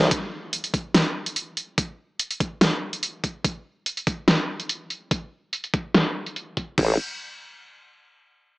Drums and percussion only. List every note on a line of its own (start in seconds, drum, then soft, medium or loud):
0.11 kick loud
0.11 closed hi-hat medium
0.53 closed hi-hat medium
0.64 closed hi-hat medium
0.74 kick loud
0.74 closed hi-hat medium
0.94 snare loud
0.94 closed hi-hat medium
1.26 closed hi-hat medium
1.36 closed hi-hat medium
1.57 closed hi-hat medium
1.78 kick loud
1.78 closed hi-hat medium
2.20 closed hi-hat medium
2.31 closed hi-hat medium
2.40 kick loud
2.40 closed hi-hat medium
2.61 snare loud
2.61 closed hi-hat medium
2.93 closed hi-hat medium
3.03 closed hi-hat medium
3.24 kick medium
3.24 closed hi-hat medium
3.45 kick loud
3.45 closed hi-hat medium
3.86 closed hi-hat medium
3.97 closed hi-hat medium
4.07 kick loud
4.07 closed hi-hat medium
4.28 snare loud
4.28 closed hi-hat medium
4.60 closed hi-hat medium
4.69 closed hi-hat medium
4.90 closed hi-hat medium
5.11 kick loud
5.11 closed hi-hat medium
5.53 closed hi-hat medium
5.64 closed hi-hat soft
5.74 kick loud
5.74 closed hi-hat medium
5.95 snare loud
5.95 closed hi-hat medium
6.26 closed hi-hat medium
6.36 closed hi-hat medium
6.57 kick medium
6.57 closed hi-hat medium
6.78 kick loud
6.78 crash medium